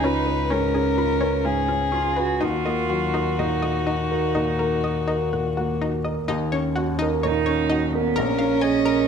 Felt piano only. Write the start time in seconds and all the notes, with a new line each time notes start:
Already playing: C#2 G#2 C#4 F4 B4
0.05 F4
0.27 B4
0.51 G#2
0.75 C#4
0.98 F4
1.22 B4
1.45 G#2
1.70 C#4
1.93 F4
2.17 B4
2.41 D#2
2.65 A#3
2.91 F#3
3.15 A#4
3.39 A#2
3.63 A#3
3.88 F#4
4.11 A#4
4.36 A#2
4.60 A#3
4.85 F#4
5.09 A#4
5.33 A#2
5.58 A#3
5.82 F#4
6.06 A#4
6.29 D#2
6.53 C#4
6.77 F#4
7.02 A#4
7.25 A#2
7.48 C#4
7.71 F#4
7.95 A#4
8.18 A#1
8.40 C#4
8.64 G#4
8.87 A#4